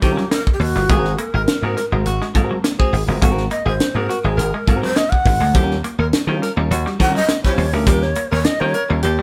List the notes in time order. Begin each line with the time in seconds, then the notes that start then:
0.02 D#3 G3 C#4 F4 G4 A#4, muted clean electric guitar stroke, kick, closed hi-hat
0.17 F#3, snare
0.31 A#3 A#4, snare, closed hi-hat
0.47 muted clean electric guitar stroke, kick
0.53 G4
0.60 D#2 F#4, open hi-hat
0.76 G1 G3, snare
0.89 G#1 G#3 C4 F#4 G#4 A#4, kick, closed hi-hat
1.05 snare
1.18 A#3 A#4, closed hi-hat
1.34 G#1 A#4, muted clean electric guitar stroke
1.47 muted slap bass stroke, snare, closed hi-hat
1.62 G#2 G#3 A#3 C4 F#4 G#4 A#4
1.77 A#4, muted clean electric guitar stroke, snare, closed hi-hat
1.92 G#1 G#3 C4 F#4 A#4
2.06 G#1 F#4, closed hi-hat
2.21 G#3, snare
2.34 G#2 G#3 C4 F#4 A#4, muted clean electric guitar stroke, kick, closed hi-hat
2.51 F#3
2.64 A#3, snare, closed hi-hat
2.79 G#3 C4 F#4 G#4 C5, muted clean electric guitar stroke, kick
2.93 G#1, open hi-hat
3.08 G1 G#3 C4 F#4 A#4
3.22 G#1 G#3 C4 F#4 A#4, kick, closed hi-hat
3.38 snare
3.51 A#3 D#5, closed hi-hat
3.65 G#1 G#4 C5, muted clean electric guitar stroke
3.80 muted slap bass stroke, snare, closed hi-hat
3.95 G#2 G#3 A#3 C4 F#4 G#4 A#4
4.09 F#4, muted clean electric guitar stroke, closed hi-hat
4.24 G#1 G#3 C4 F#4 G#4 A#4
4.37 G#1 A#4, closed hi-hat
4.54 G#3 A#4
4.67 G#2 G#3 C4 F#4 A#4, muted clean electric guitar stroke, kick, closed hi-hat
4.83 F#3 C5, snare
4.96 A#3 D#5, snare, closed hi-hat
5.11 F#5, muted clean electric guitar stroke, kick
5.26 G#1, kick, open hi-hat
5.40 D2 G#3
5.54 D#2 G3 C#4 F4 G4 A#4, kick, closed hi-hat
5.71 snare
5.84 A#3, closed hi-hat
5.99 D#2 A#4, muted clean electric guitar stroke
6.12 muted slap bass stroke, snare, closed hi-hat
6.27 D#3 G3 A#3 C#4 F4 G4 A#4
6.42 A#4, muted clean electric guitar stroke, snare, closed hi-hat
6.56 D#2 G3 C#4 F4 A#4
6.71 D#2 F#4, closed hi-hat
6.86 G3, snare
6.99 D#3 G3 C#4 F4 A#4 F#5, muted clean electric guitar stroke, kick, closed hi-hat
7.15 F#3 D#5
7.28 A#3, snare, closed hi-hat
7.44 G3 C#4 F4 G4 C5 C#5, muted clean electric guitar stroke, kick
7.58 D#2, open hi-hat
7.73 D2 G3 C#4 F4 A#4
7.87 D#2 G3 C#4 F4 G4 A#4, kick, closed hi-hat
8.02 C#5, snare
8.15 A#3, closed hi-hat
8.31 D#2 A#4 C#5, muted clean electric guitar stroke
8.44 D#5, muted slap bass stroke, snare, closed hi-hat
8.60 D#3 G3 A#3 C#4 F4 G4 A#4 C#5
8.74 A#4, muted clean electric guitar stroke, closed hi-hat
8.89 D#2 G3 C#4 F4 A#4
9.03 D#2 G4, closed hi-hat
9.19 G3